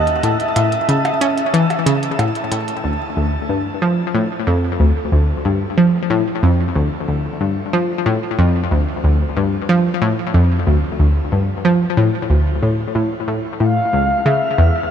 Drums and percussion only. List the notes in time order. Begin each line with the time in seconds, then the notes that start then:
0.07 closed hi-hat
0.23 closed hi-hat
0.40 closed hi-hat
0.56 closed hi-hat, percussion blips
0.72 closed hi-hat
0.89 closed hi-hat
1.05 closed hi-hat, percussion blips
1.21 closed hi-hat
1.38 closed hi-hat
1.54 closed hi-hat
1.70 closed hi-hat, percussion blips
1.87 closed hi-hat
2.03 closed hi-hat
2.19 closed hi-hat, percussion blips
2.35 closed hi-hat
2.52 closed hi-hat
2.68 closed hi-hat